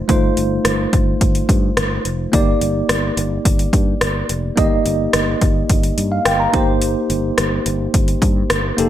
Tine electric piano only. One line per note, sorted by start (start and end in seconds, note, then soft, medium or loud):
0.08 2.29 A3 medium
0.08 2.29 D#4 medium
0.08 2.29 F4 medium
0.08 2.30 C5 medium
2.32 4.53 A#3 medium
2.32 4.53 D#4 medium
2.32 4.54 G4 medium
2.32 4.54 D5 medium
4.56 6.49 A#3 medium
4.56 6.50 D#4 medium
4.56 6.50 G4 medium
4.56 6.50 D#5 medium
6.12 6.25 F5 medium
6.26 6.39 G5 medium
6.40 6.66 A#5 medium
6.53 8.73 A#3 medium
6.53 8.74 D#4 medium
6.53 8.74 G4 medium
6.53 8.75 C5 medium
8.77 8.89 A#3 medium
8.77 8.89 D#4 medium
8.77 8.89 G4 medium
8.77 8.89 A4 medium